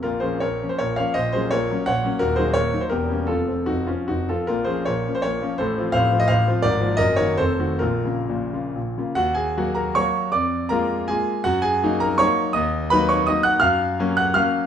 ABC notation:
X:1
M:3/4
L:1/16
Q:1/4=162
K:Bbm
V:1 name="Grand piano"
[FB]2 [Ac]2 [Bd]3 c [Bd]2 [df]2 | [ce]2 [Ac]2 [Bd]4 [dg]4 | [GB]2 [Ac]2 [Bd]3 c [=GB]4 | [F=A]4 [EG]2 [DF]2 [EG]2 [FA]2 |
[FB]2 [Ac]2 [Bd]3 c [Bd]4 | [=Ac]4 [cf]3 e [cf]4 | [B=d]4 [Be]2 [B_d]2 [=Ac]4 | [FB]8 z4 |
[K:Ebm] [Gg]2 [Aa]4 [Bb]2 [dd']4 | [=d=d']4 [Bb]4 [Aa]4 | [Gg]2 [Aa]4 [Bb]2 [dd']4 | [ee']4 [cc']2 [dd']2 [ee']2 [gg']2 |
[K:Gblyd] [ff']6 [gg']2 [ff']4 |]
V:2 name="Grand piano" clef=bass
[B,,,B,,]2 [F,B,D]2 [B,,,B,,]2 [F,B,D]2 [B,,,B,,]2 [F,B,D]2 | [B,,,B,,]2 [G,B,D]2 [B,,,B,,]2 [G,B,D]2 [B,,,B,,]2 [G,B,D]2 | [E,,,E,,]2 [G,B,E]2 [E,,,E,,]2 [G,B,E]2 [=E,,,=E,,]2 [=G,B,^C]2 | [F,,,F,,]2 [F,C]2 [F,,,F,,]2 [F,C]2 [F,,,F,,]2 [F,C]2 |
[B,,,B,,]2 [F,B,D]2 [B,,,B,,]2 [F,B,D]2 [B,,,B,,]2 [F,B,D]2 | [=A,,,=A,,]2 [F,CF]2 [A,,,A,,]2 [F,CF]2 [A,,,A,,]2 [F,CF]2 | [A,,,A,,]2 [F,B,F]2 [G,,,G,,]2 [E,B,G]2 [F,,,F,,]2 [E,=A,G]2 | [B,,,B,,]2 [D,B,F]2 [B,,,B,,]2 [D,B,F]2 [B,,,B,,]2 [D,B,F]2 |
[K:Ebm] E,,4 [G,B,G]4 [G,B,G]4 | F,,4 [A,B,F]4 [A,B,F]4 | G,,4 [G,B,E]4 [G,B,E]4 | E,,4 [G,B,E]4 [G,B,E]4 |
[K:Gblyd] G,,4 [G,B,D]4 [G,B,D]4 |]